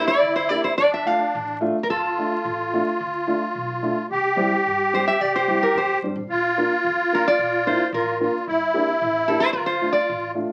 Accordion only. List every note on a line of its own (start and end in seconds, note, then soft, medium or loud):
0.00 0.73 E4 loud
0.79 1.58 D4 loud
1.89 4.06 F4 medium
4.11 5.99 G4 loud
6.30 7.89 F4 loud
7.93 8.18 F4 loud
8.20 8.45 F4 medium
8.47 9.51 E4 loud
9.55 10.31 F4 loud